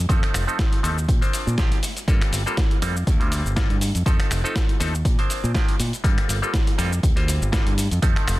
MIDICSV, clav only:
0, 0, Header, 1, 2, 480
1, 0, Start_track
1, 0, Key_signature, -2, "minor"
1, 0, Tempo, 495868
1, 90, Time_signature, 4, 2, 24, 8
1, 8127, End_track
2, 0, Start_track
2, 0, Title_t, "Clav"
2, 0, Program_c, 0, 7
2, 86, Note_on_c, 0, 53, 106
2, 88, Note_on_c, 0, 57, 92
2, 89, Note_on_c, 0, 60, 94
2, 91, Note_on_c, 0, 63, 94
2, 94, Note_on_c, 0, 69, 107
2, 427, Note_off_c, 0, 53, 0
2, 428, Note_off_c, 0, 57, 0
2, 429, Note_off_c, 0, 60, 0
2, 430, Note_off_c, 0, 63, 0
2, 431, Note_off_c, 0, 69, 0
2, 458, Note_on_c, 0, 53, 79
2, 462, Note_on_c, 0, 57, 71
2, 462, Note_on_c, 0, 60, 74
2, 464, Note_on_c, 0, 63, 71
2, 467, Note_on_c, 0, 69, 90
2, 783, Note_off_c, 0, 53, 0
2, 784, Note_off_c, 0, 57, 0
2, 785, Note_off_c, 0, 60, 0
2, 785, Note_off_c, 0, 63, 0
2, 787, Note_off_c, 0, 69, 0
2, 805, Note_on_c, 0, 53, 94
2, 807, Note_on_c, 0, 60, 87
2, 809, Note_on_c, 0, 57, 86
2, 810, Note_on_c, 0, 63, 88
2, 813, Note_on_c, 0, 69, 110
2, 941, Note_off_c, 0, 53, 0
2, 942, Note_off_c, 0, 60, 0
2, 943, Note_off_c, 0, 57, 0
2, 944, Note_off_c, 0, 63, 0
2, 945, Note_off_c, 0, 69, 0
2, 1176, Note_on_c, 0, 53, 73
2, 1176, Note_on_c, 0, 58, 66
2, 1178, Note_on_c, 0, 60, 65
2, 1180, Note_on_c, 0, 62, 70
2, 1182, Note_on_c, 0, 72, 82
2, 1501, Note_off_c, 0, 58, 0
2, 1502, Note_off_c, 0, 53, 0
2, 1502, Note_off_c, 0, 60, 0
2, 1503, Note_off_c, 0, 62, 0
2, 1504, Note_off_c, 0, 72, 0
2, 1529, Note_on_c, 0, 53, 96
2, 1530, Note_on_c, 0, 58, 88
2, 1535, Note_on_c, 0, 60, 86
2, 1537, Note_on_c, 0, 62, 90
2, 1537, Note_on_c, 0, 67, 109
2, 1730, Note_off_c, 0, 53, 0
2, 1731, Note_off_c, 0, 58, 0
2, 1733, Note_off_c, 0, 60, 0
2, 1734, Note_off_c, 0, 62, 0
2, 1734, Note_off_c, 0, 67, 0
2, 2010, Note_on_c, 0, 55, 104
2, 2012, Note_on_c, 0, 58, 91
2, 2015, Note_on_c, 0, 60, 93
2, 2015, Note_on_c, 0, 65, 93
2, 2017, Note_on_c, 0, 69, 112
2, 2349, Note_off_c, 0, 55, 0
2, 2351, Note_off_c, 0, 58, 0
2, 2352, Note_off_c, 0, 60, 0
2, 2352, Note_off_c, 0, 65, 0
2, 2353, Note_off_c, 0, 69, 0
2, 2384, Note_on_c, 0, 55, 78
2, 2384, Note_on_c, 0, 58, 73
2, 2389, Note_on_c, 0, 60, 70
2, 2390, Note_on_c, 0, 65, 71
2, 2392, Note_on_c, 0, 69, 87
2, 2705, Note_off_c, 0, 58, 0
2, 2706, Note_off_c, 0, 55, 0
2, 2708, Note_off_c, 0, 60, 0
2, 2708, Note_off_c, 0, 65, 0
2, 2709, Note_off_c, 0, 69, 0
2, 2731, Note_on_c, 0, 55, 97
2, 2733, Note_on_c, 0, 58, 83
2, 2736, Note_on_c, 0, 60, 88
2, 2737, Note_on_c, 0, 65, 89
2, 2739, Note_on_c, 0, 69, 103
2, 2864, Note_off_c, 0, 55, 0
2, 2865, Note_off_c, 0, 58, 0
2, 2866, Note_off_c, 0, 60, 0
2, 2867, Note_off_c, 0, 65, 0
2, 2868, Note_off_c, 0, 69, 0
2, 3097, Note_on_c, 0, 55, 72
2, 3099, Note_on_c, 0, 58, 68
2, 3102, Note_on_c, 0, 60, 66
2, 3104, Note_on_c, 0, 65, 72
2, 3106, Note_on_c, 0, 72, 83
2, 3422, Note_off_c, 0, 55, 0
2, 3423, Note_off_c, 0, 58, 0
2, 3424, Note_off_c, 0, 60, 0
2, 3425, Note_off_c, 0, 65, 0
2, 3426, Note_off_c, 0, 72, 0
2, 3448, Note_on_c, 0, 55, 98
2, 3448, Note_on_c, 0, 58, 88
2, 3450, Note_on_c, 0, 60, 90
2, 3451, Note_on_c, 0, 65, 91
2, 3455, Note_on_c, 0, 69, 110
2, 3650, Note_off_c, 0, 55, 0
2, 3650, Note_off_c, 0, 58, 0
2, 3651, Note_off_c, 0, 60, 0
2, 3651, Note_off_c, 0, 65, 0
2, 3653, Note_off_c, 0, 69, 0
2, 3928, Note_on_c, 0, 53, 104
2, 3931, Note_on_c, 0, 57, 95
2, 3932, Note_on_c, 0, 60, 91
2, 3933, Note_on_c, 0, 63, 93
2, 3935, Note_on_c, 0, 69, 113
2, 4269, Note_off_c, 0, 53, 0
2, 4270, Note_off_c, 0, 57, 0
2, 4270, Note_off_c, 0, 60, 0
2, 4271, Note_off_c, 0, 63, 0
2, 4272, Note_off_c, 0, 69, 0
2, 4297, Note_on_c, 0, 53, 77
2, 4298, Note_on_c, 0, 57, 71
2, 4303, Note_on_c, 0, 60, 74
2, 4303, Note_on_c, 0, 63, 74
2, 4306, Note_on_c, 0, 69, 87
2, 4622, Note_off_c, 0, 53, 0
2, 4623, Note_off_c, 0, 57, 0
2, 4625, Note_off_c, 0, 60, 0
2, 4625, Note_off_c, 0, 63, 0
2, 4626, Note_off_c, 0, 69, 0
2, 4645, Note_on_c, 0, 53, 93
2, 4648, Note_on_c, 0, 57, 86
2, 4651, Note_on_c, 0, 60, 86
2, 4652, Note_on_c, 0, 63, 87
2, 4653, Note_on_c, 0, 69, 105
2, 4781, Note_off_c, 0, 53, 0
2, 4783, Note_off_c, 0, 57, 0
2, 4784, Note_off_c, 0, 60, 0
2, 4784, Note_off_c, 0, 63, 0
2, 4785, Note_off_c, 0, 69, 0
2, 5020, Note_on_c, 0, 53, 75
2, 5021, Note_on_c, 0, 58, 69
2, 5023, Note_on_c, 0, 60, 70
2, 5025, Note_on_c, 0, 62, 70
2, 5027, Note_on_c, 0, 72, 82
2, 5343, Note_off_c, 0, 53, 0
2, 5344, Note_off_c, 0, 58, 0
2, 5345, Note_off_c, 0, 60, 0
2, 5346, Note_off_c, 0, 62, 0
2, 5347, Note_off_c, 0, 72, 0
2, 5367, Note_on_c, 0, 53, 96
2, 5369, Note_on_c, 0, 58, 89
2, 5369, Note_on_c, 0, 60, 88
2, 5374, Note_on_c, 0, 62, 89
2, 5375, Note_on_c, 0, 67, 104
2, 5569, Note_off_c, 0, 53, 0
2, 5570, Note_off_c, 0, 58, 0
2, 5571, Note_off_c, 0, 60, 0
2, 5573, Note_off_c, 0, 62, 0
2, 5574, Note_off_c, 0, 67, 0
2, 5844, Note_on_c, 0, 55, 103
2, 5847, Note_on_c, 0, 58, 93
2, 5848, Note_on_c, 0, 60, 94
2, 5850, Note_on_c, 0, 65, 96
2, 5852, Note_on_c, 0, 69, 110
2, 6186, Note_off_c, 0, 55, 0
2, 6188, Note_off_c, 0, 58, 0
2, 6188, Note_off_c, 0, 60, 0
2, 6189, Note_off_c, 0, 65, 0
2, 6190, Note_off_c, 0, 69, 0
2, 6216, Note_on_c, 0, 55, 78
2, 6219, Note_on_c, 0, 58, 74
2, 6219, Note_on_c, 0, 60, 76
2, 6221, Note_on_c, 0, 65, 73
2, 6223, Note_on_c, 0, 69, 85
2, 6541, Note_off_c, 0, 55, 0
2, 6543, Note_off_c, 0, 58, 0
2, 6543, Note_off_c, 0, 60, 0
2, 6544, Note_off_c, 0, 65, 0
2, 6545, Note_off_c, 0, 69, 0
2, 6564, Note_on_c, 0, 55, 97
2, 6566, Note_on_c, 0, 58, 87
2, 6567, Note_on_c, 0, 60, 89
2, 6568, Note_on_c, 0, 65, 85
2, 6569, Note_on_c, 0, 69, 106
2, 6701, Note_off_c, 0, 55, 0
2, 6702, Note_off_c, 0, 58, 0
2, 6702, Note_off_c, 0, 60, 0
2, 6703, Note_off_c, 0, 65, 0
2, 6703, Note_off_c, 0, 69, 0
2, 6932, Note_on_c, 0, 55, 73
2, 6932, Note_on_c, 0, 58, 71
2, 6935, Note_on_c, 0, 60, 70
2, 6936, Note_on_c, 0, 65, 70
2, 6938, Note_on_c, 0, 72, 83
2, 7259, Note_off_c, 0, 55, 0
2, 7260, Note_off_c, 0, 58, 0
2, 7261, Note_off_c, 0, 60, 0
2, 7261, Note_off_c, 0, 65, 0
2, 7263, Note_off_c, 0, 72, 0
2, 7282, Note_on_c, 0, 55, 99
2, 7285, Note_on_c, 0, 58, 92
2, 7287, Note_on_c, 0, 60, 91
2, 7288, Note_on_c, 0, 65, 88
2, 7291, Note_on_c, 0, 69, 104
2, 7487, Note_off_c, 0, 55, 0
2, 7489, Note_off_c, 0, 58, 0
2, 7489, Note_off_c, 0, 60, 0
2, 7490, Note_off_c, 0, 65, 0
2, 7492, Note_off_c, 0, 69, 0
2, 7766, Note_on_c, 0, 53, 101
2, 7770, Note_on_c, 0, 57, 94
2, 7771, Note_on_c, 0, 60, 98
2, 7773, Note_on_c, 0, 63, 96
2, 7776, Note_on_c, 0, 69, 116
2, 8107, Note_off_c, 0, 53, 0
2, 8109, Note_off_c, 0, 57, 0
2, 8110, Note_off_c, 0, 60, 0
2, 8111, Note_off_c, 0, 63, 0
2, 8112, Note_off_c, 0, 69, 0
2, 8127, End_track
0, 0, End_of_file